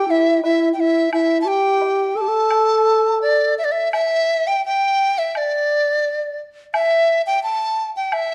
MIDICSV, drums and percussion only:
0, 0, Header, 1, 2, 480
1, 0, Start_track
1, 0, Tempo, 684932
1, 783, Time_signature, 2, 2, 24, 8
1, 1264, Tempo, 710059
1, 3664, Tempo, 691244
1, 5741, End_track
2, 0, Start_track
2, 0, Title_t, "Drums"
2, 306, Note_on_c, 9, 77, 40
2, 376, Note_off_c, 9, 77, 0
2, 789, Note_on_c, 9, 76, 46
2, 859, Note_off_c, 9, 76, 0
2, 1270, Note_on_c, 9, 77, 35
2, 1338, Note_off_c, 9, 77, 0
2, 1739, Note_on_c, 9, 76, 47
2, 1806, Note_off_c, 9, 76, 0
2, 2703, Note_on_c, 9, 76, 50
2, 2770, Note_off_c, 9, 76, 0
2, 3662, Note_on_c, 9, 76, 46
2, 3732, Note_off_c, 9, 76, 0
2, 4626, Note_on_c, 9, 76, 60
2, 4695, Note_off_c, 9, 76, 0
2, 5586, Note_on_c, 9, 76, 54
2, 5655, Note_off_c, 9, 76, 0
2, 5741, End_track
0, 0, End_of_file